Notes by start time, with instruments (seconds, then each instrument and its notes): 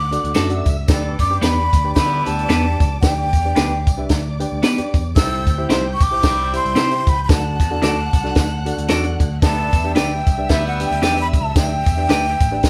Already playing: picked electric bass D2, string section F#5 F#6, flute D6
0.11 reed electric piano D4 F#4 A4 D5 F#5, closed hi-hat, tambourine
0.24 picked electric bass D2, closed hi-hat
0.34 picked electric bass F#2, clean electric guitar A3 D4 F#4 A4, string section E5 E6, snare, closed hi-hat, tambourine
0.49 reed electric piano D4 F#4 A4 D5 F#5, closed hi-hat
0.66 picked electric bass C#2, kick, closed hi-hat, tambourine
0.88 picked electric bass D2, horn section B3 D4 A4, reed electric piano D4 G4 B4 D5 G5, string section D5 D6, kick, snare, closed hi-hat, tambourine
1.19 picked electric bass F#2, flute D6, kick, closed hi-hat, tambourine
1.30 horn section B3 D4 G4, reed electric piano D4 G4 B4 D5 G5
1.41 picked electric bass E2, clean electric guitar B3 D4 G4 B4, flute B5, snare, closed hi-hat, tambourine
1.73 picked electric bass D2, kick, closed hi-hat, tambourine
1.84 reed electric piano D4 G4 B4 D5 G5
1.95 picked electric bass D3, horn section G3 B3 E4, flute B5, kick, snare, closed hi-hat, tambourine
2.26 picked electric bass D2, reed electric piano D4 G4 B4 D5 G5, flute A5, closed hi-hat, tambourine
2.39 closed hi-hat
2.49 picked electric bass E2, clean electric guitar B3 D4 G4 B4, snare, closed hi-hat, tambourine
2.65 reed electric piano D4 G4 B4 D5 G5
2.80 picked electric bass C#2, kick, closed hi-hat, tambourine
3.01 picked electric bass D2, reed electric piano D4 G4 B4 D5 G5, flute G5, kick, snare, closed hi-hat, tambourine
3.33 picked electric bass E2, kick, closed hi-hat, tambourine
3.45 reed electric piano D4 G4 B4 D5 G5
3.56 picked electric bass D2, clean electric guitar B3 D4 G4 B4, snare, closed hi-hat, tambourine
3.87 picked electric bass C2, kick, closed hi-hat, tambourine
3.97 reed electric piano D4 G4 B4 D5 E5
4.09 picked electric bass D2, string section D5 D6, kick, snare, closed hi-hat, tambourine
4.40 reed electric piano D4 G4 B4 D5 G5, closed hi-hat, tambourine
4.52 picked electric bass D2
4.63 clean electric guitar B3 D4 G4 B4, snare, closed hi-hat, tambourine
4.77 reed electric piano D4 G4 B4 D5 G5, muted picked electric bass stroke, closed hi-hat
4.94 picked electric bass E2, kick, closed hi-hat, tambourine
5.15 picked electric bass C2, horn section C4 E4 A4, reed electric piano E4 G4 C5 E5 G5, string section G5 G6, flute E6, kick, snare, closed hi-hat, tambourine
5.47 picked electric bass D2, kick, closed hi-hat, tambourine
5.57 horn section C4 E4 G4, reed electric piano E4 G4 C5 E5 G5
5.69 picked electric bass C2, clean electric guitar C4 E4 G4 C5, snare, closed hi-hat, tambourine
5.94 flute C#6
6.01 picked electric bass B1, flute D6, kick, closed hi-hat, tambourine
6.11 reed electric piano E4 G4 C5 E5 G5
6.23 picked electric bass C2, horn section G3 C4 E4, kick, snare, closed hi-hat, tambourine
6.53 reed electric piano E4 G4 C5 E5 G5, flute C6, closed hi-hat, tambourine
6.65 picked electric bass C2, closed hi-hat
6.75 picked electric bass C3, clean electric guitar C4 E4 G4 C5, snare, closed hi-hat, tambourine
6.90 reed electric piano E4 G4 C5 E5 G5, closed hi-hat
7.07 picked electric bass C#2, flute B5, kick, closed hi-hat, tambourine
7.24 flute B5
7.29 picked electric bass D2, reed electric piano D4 F#4 A4 D5 F#5, string section F#5 F#6, flute A5, kick, snare, closed hi-hat, tambourine
7.60 picked electric bass E2, kick, closed hi-hat, tambourine
7.71 reed electric piano D4 F#4 A4 D5 F#5
7.82 picked electric bass D2, clean electric guitar D4 F#4 A4 D5, snare, closed hi-hat, tambourine
8.13 picked electric bass C2, kick, closed hi-hat, tambourine
8.24 reed electric piano D4 F#4 A4 D5 F#5, snare
8.35 picked electric bass D2, kick, snare, closed hi-hat, tambourine
8.65 reed electric piano D4 F#4 A4 D5 F#5, closed hi-hat, tambourine
8.78 picked electric bass D2, closed hi-hat
8.88 picked electric bass E2, clean electric guitar D4 F#4 A4 D5, reed electric piano A5, snare, closed hi-hat, tambourine
9.04 reed electric piano D4 F#4 A4 D5 F#5, closed hi-hat
9.20 picked electric bass D2, kick, closed hi-hat, tambourine
9.42 picked electric bass D2, horn section B3 D4 A4, reed electric piano D4 G4 B4 D5 G5, string section E5 E6, flute A5, kick, snare, closed hi-hat, tambourine
9.73 picked electric bass E2, kick, closed hi-hat, tambourine
9.84 horn section B3 D4 G4, reed electric piano D4 G4 B4 D5 G5
9.95 picked electric bass D2, clean electric guitar D4 G4 B4 D5, flute G5, snare, closed hi-hat, tambourine
10.27 picked electric bass C2, kick, closed hi-hat, tambourine
10.38 reed electric piano D4 G4 B4 D5 E5
10.49 picked electric bass D2, horn section G3 B3 E4, flute E5, kick, snare, closed hi-hat, tambourine
10.68 flute F#5
10.79 reed electric piano D4 G4 B4 D5 G5, closed hi-hat, tambourine
10.85 flute G5
10.91 picked electric bass D2, closed hi-hat
11.02 picked electric bass E2, clean electric guitar D4 G4 B4 D5, flute G5, snare, closed hi-hat, tambourine
11.17 reed electric piano D4 G4 B4 D5 G5, closed hi-hat
11.21 flute B5
11.34 picked electric bass C#2, kick, closed hi-hat, tambourine
11.39 flute A5
11.55 picked electric bass D2, reed electric piano D4 G4 B4 D5 G5, flute G5, kick, snare, closed hi-hat, tambourine
11.86 picked electric bass E2, kick, closed hi-hat, tambourine
11.97 reed electric piano D4 G4 B4 D5 G5
12.09 picked electric bass D2, clean electric guitar D4 G4 B4 D5, snare, closed hi-hat, tambourine
12.40 picked electric bass A1, kick, closed hi-hat, tambourine
12.51 reed electric piano D4 G4 B4 D5 G5
12.63 picked electric bass B1, kick, snare, closed hi-hat, tambourine